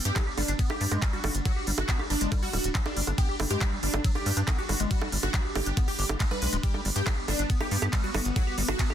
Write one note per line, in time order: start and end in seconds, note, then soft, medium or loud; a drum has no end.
0.00 8.94 G3 medium
0.00 6.66 D4 medium
0.05 0.11 G2 medium
0.05 0.23 G4 medium
0.05 closed hi-hat medium
0.16 0.23 F#3 medium
0.16 kick loud
0.16 clap loud
0.16 closed hi-hat medium
0.16 ride medium
0.16 high bongo medium
0.27 0.37 G4 medium
0.37 0.44 G1 loud
0.37 0.42 G3 medium
0.37 0.56 D4 loud
0.37 open hi-hat loud
0.37 high bongo soft
0.48 0.54 G1 medium
0.48 0.52 D4 medium
0.48 closed hi-hat medium
0.59 0.69 B3 medium
0.59 kick loud
0.59 closed hi-hat medium
0.59 ride medium
0.70 0.94 G4 loud
0.70 0.77 G4 loud
0.70 high bongo medium
0.81 0.87 G2 medium
0.81 0.85 G3 medium
0.81 open hi-hat loud
0.91 0.98 G2 medium
0.91 1.02 G#3 medium
0.91 closed hi-hat medium
0.91 high bongo soft
1.02 1.12 G3 medium
1.02 kick loud
1.02 clap loud
1.02 closed hi-hat medium
1.02 ride medium
1.13 1.20 G3 medium
1.13 1.31 F#4 loud
1.24 1.30 G1 medium
1.24 1.28 G3 medium
1.24 open hi-hat loud
1.24 high bongo medium
1.35 1.41 G1 medium
1.35 closed hi-hat medium
1.45 1.52 F#3 medium
1.45 1.64 F#4 loud
1.45 kick loud
1.45 closed hi-hat medium
1.45 ride medium
1.45 high bongo soft
1.56 1.66 G4 medium
1.67 1.73 G1 loud
1.67 1.71 G3 medium
1.67 open hi-hat loud
1.78 1.84 G1 medium
1.78 1.82 D4 medium
1.78 1.96 F#4 loud
1.78 closed hi-hat medium
1.78 high bongo medium
1.89 1.99 B3 medium
1.89 kick loud
1.89 clap loud
1.89 closed hi-hat medium
1.89 ride medium
1.99 2.06 G4 loud
1.99 high bongo soft
2.10 2.16 G1 loud
2.10 2.14 G3 medium
2.10 2.28 D4 loud
2.10 open hi-hat loud
2.21 2.27 G1 medium
2.21 2.31 G#3 medium
2.21 closed hi-hat medium
2.32 2.42 G3 medium
2.32 kick loud
2.32 closed hi-hat medium
2.32 ride medium
2.32 high bongo medium
2.43 2.49 G3 medium
2.43 2.67 F#4 loud
2.43 open hi-hat medium
2.53 2.59 D1 loud
2.53 2.57 G3 medium
2.53 open hi-hat loud
2.53 high bongo soft
2.64 2.70 D1 medium
2.64 closed hi-hat medium
2.75 2.82 F#3 medium
2.75 kick loud
2.75 clap loud
2.75 closed hi-hat medium
2.75 ride medium
2.86 3.04 D4 medium
2.86 2.96 G4 medium
2.86 high bongo medium
2.96 3.03 G1 medium
2.96 3.01 G3 medium
2.96 open hi-hat loud
3.07 3.13 G1 medium
3.07 3.11 D4 medium
3.07 closed hi-hat medium
3.07 high bongo soft
3.18 3.28 B3 medium
3.18 3.36 G4 loud
3.18 kick loud
3.18 closed hi-hat medium
3.18 ride medium
3.29 3.36 G4 loud
3.40 3.46 G1 loud
3.40 3.44 G3 medium
3.40 open hi-hat loud
3.40 high bongo medium
3.50 3.57 G2 medium
3.50 3.61 G#3 medium
3.50 3.69 G4 loud
3.50 closed hi-hat medium
3.61 3.71 G3 medium
3.61 kick loud
3.61 clap loud
3.61 closed hi-hat medium
3.61 ride medium
3.61 high bongo soft
3.72 3.79 G3 medium
3.83 3.89 G1 loud
3.83 3.87 G3 medium
3.83 4.01 D4 loud
3.83 open hi-hat loud
3.94 4.00 G1 medium
3.94 closed hi-hat medium
3.94 high bongo medium
4.04 4.11 F#3 medium
4.04 kick loud
4.04 closed hi-hat medium
4.04 ride medium
4.15 4.40 G4 loud
4.15 4.25 G4 medium
4.15 high bongo soft
4.26 4.32 G2 medium
4.26 4.30 G3 medium
4.26 open hi-hat loud
4.37 4.43 G2 medium
4.37 4.41 D4 medium
4.37 closed hi-hat medium
4.48 4.58 B3 medium
4.48 kick loud
4.48 clap loud
4.48 closed hi-hat medium
4.48 ride medium
4.48 high bongo medium
4.58 4.77 F#4 medium
4.58 4.65 G4 loud
4.69 4.75 G1 medium
4.69 4.73 G3 medium
4.69 open hi-hat loud
4.69 high bongo soft
4.80 4.86 G1 medium
4.80 4.90 G#3 medium
4.80 closed hi-hat medium
4.91 5.01 G3 medium
4.91 5.09 F#4 loud
4.91 kick loud
4.91 closed hi-hat medium
4.91 ride medium
5.02 5.08 G3 medium
5.02 high bongo medium
5.12 5.18 G1 loud
5.12 5.16 G3 medium
5.12 open hi-hat loud
5.23 5.29 G1 medium
5.23 5.41 F#4 loud
5.23 closed hi-hat medium
5.23 high bongo soft
5.34 5.41 F#3 medium
5.34 kick loud
5.34 clap loud
5.34 closed hi-hat medium
5.34 ride medium
5.45 5.55 G4 medium
5.55 5.62 G1 loud
5.55 5.60 G3 medium
5.55 5.74 G4 loud
5.55 open hi-hat loud
5.55 high bongo medium
5.66 5.72 G1 medium
5.66 5.70 D4 medium
5.66 closed hi-hat medium
5.77 5.87 B3 medium
5.77 kick loud
5.77 closed hi-hat medium
5.77 ride medium
5.77 high bongo soft
5.88 6.12 G4 loud
5.88 5.95 G4 loud
5.88 open hi-hat medium
5.99 6.05 G1 loud
5.99 6.05 G4 medium
5.99 open hi-hat loud
6.09 6.16 G1 medium
6.09 6.16 G4 medium
6.09 closed hi-hat medium
6.09 high bongo medium
6.20 6.24 G#3 medium
6.20 kick loud
6.20 clap loud
6.20 closed hi-hat medium
6.20 ride medium
6.31 6.41 G3 medium
6.31 6.49 B4 medium
6.31 high bongo soft
6.42 6.48 B1 loud
6.42 6.52 G#3 medium
6.42 open hi-hat loud
6.53 6.59 D1 medium
6.53 6.57 G#3 loud
6.53 closed hi-hat medium
6.63 6.74 G3 medium
6.63 8.94 B3 medium
6.63 6.82 G4 loud
6.63 kick loud
6.63 closed hi-hat medium
6.63 ride medium
6.74 6.81 G3 medium
6.74 high bongo soft
6.85 6.91 G1 loud
6.85 6.89 G3 medium
6.85 open hi-hat loud
6.96 7.02 G2 medium
6.96 7.14 G4 medium
6.96 closed hi-hat medium
7.07 7.13 F#3 medium
7.07 kick loud
7.07 clap loud
7.07 closed hi-hat medium
7.07 ride medium
7.07 high bongo medium
7.17 7.28 G4 medium
7.28 7.34 G1 loud
7.28 7.32 G3 medium
7.28 7.46 D4 loud
7.28 open hi-hat loud
7.28 high bongo soft
7.39 7.45 G1 medium
7.39 7.43 D4 medium
7.39 closed hi-hat medium
7.50 7.60 B3 medium
7.50 kick loud
7.50 closed hi-hat medium
7.50 ride medium
7.60 7.85 G4 loud
7.60 7.67 G4 loud
7.60 high bongo medium
7.71 7.77 G2 medium
7.71 7.75 G3 medium
7.71 open hi-hat loud
7.82 7.88 G2 medium
7.82 7.86 G4 loud
7.82 closed hi-hat medium
7.82 high bongo soft
7.93 8.03 G3 medium
7.93 kick loud
7.93 clap loud
7.93 closed hi-hat medium
7.93 ride medium
8.04 8.11 G3 medium
8.04 8.22 F#4 loud
8.14 8.21 G1 medium
8.14 8.19 G3 medium
8.14 open hi-hat loud
8.14 high bongo medium
8.25 8.31 G1 medium
8.25 closed hi-hat medium
8.36 8.43 F#3 medium
8.36 8.54 F#4 loud
8.36 kick loud
8.36 closed hi-hat medium
8.36 ride medium
8.36 high bongo soft
8.47 8.57 G4 medium
8.58 8.64 G1 loud
8.58 8.62 G3 medium
8.58 open hi-hat loud
8.68 8.75 G1 medium
8.68 8.73 D4 medium
8.68 8.87 F#4 loud
8.68 closed hi-hat medium
8.68 high bongo medium
8.79 8.89 B3 medium
8.79 kick loud
8.79 clap loud
8.79 closed hi-hat medium
8.79 ride medium
8.90 8.94 G4 loud
8.90 high bongo soft